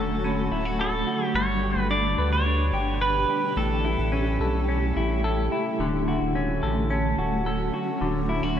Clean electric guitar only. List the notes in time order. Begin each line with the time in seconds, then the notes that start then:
Already playing: D3 C#4 F#4 A4
0.24 C#4
0.52 E4
0.65 F#4
0.79 A4
1.07 F#4
1.35 G3
1.63 G4
1.90 D4
2.18 B4
2.46 D4
2.74 G4
3.01 B4
3.30 G4
3.57 A2
3.85 E4
4.12 C#4
4.41 A4
4.69 C#4
4.97 E4
5.24 A4
5.52 E4
5.80 D3
6.08 F#4
6.35 C#4
6.63 A4
6.90 C#4
7.18 F#4
7.46 A4
7.74 F#4
8.01 D3
8.29 E4
8.43 F#4